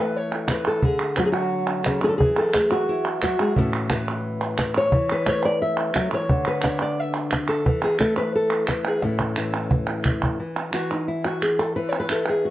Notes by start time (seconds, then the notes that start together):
Already playing: E3 A3 A4
0.00 B4
0.16 C#5
0.48 B4, cajon slap, clap
0.65 A4, cajon slap, clap
0.83 D3 G#4, cajon bass
1.16 F#3 F#4, cajon slap, clap
1.26 G#4
1.32 F#4
1.84 C#3, cajon slap, clap
2.04 D3 G#4
2.09 A4
2.18 E3 G#4, cajon bass
2.38 A4
2.54 A3 G#4, cajon slap, clap
2.72 F#4
2.89 E4
3.22 F#3 F#4, cajon slap, clap
3.39 G#3 G#4, cajon slap
3.56 A2 E3 C#4 F#4 A4, cajon bass
3.90 E3 B4, cajon slap, clap
4.08 clap
4.58 cajon slap, clap
4.76 C#5, cajon slap
4.92 E3, cajon bass
5.12 B4
5.26 A3 C#5, cajon slap, clap
5.45 D5
5.62 E5
5.94 F#3, cajon slap, clap
6.12 E3 C#5, cajon slap
6.29 D3, cajon bass
6.47 B4
6.61 D4 C#5, cajon slap, clap
6.82 D5
7.00 E5
7.31 cajon slap, clap
7.49 A4
7.65 E3, cajon bass
7.84 G#4
7.99 A3 A4, cajon slap, clap
8.17 B4
8.35 A4
8.67 B4, cajon slap, clap
8.85 G#4, clap
9.02 A2 E3 C#4 E4 A4, cajon slap
9.19 cajon slap
9.36 E3, clap
9.71 cajon bass
10.04 cajon bass, clap
10.23 cajon bass
10.40 E3
10.73 E3 F#4, clap
10.91 D#4
11.08 E4
11.25 F#4
11.42 G#4, clap
11.59 A4
11.76 E3 B4
11.89 C#5
12.00 B4
12.09 E4 A4, clap
12.26 G#4, clap
12.45 F#4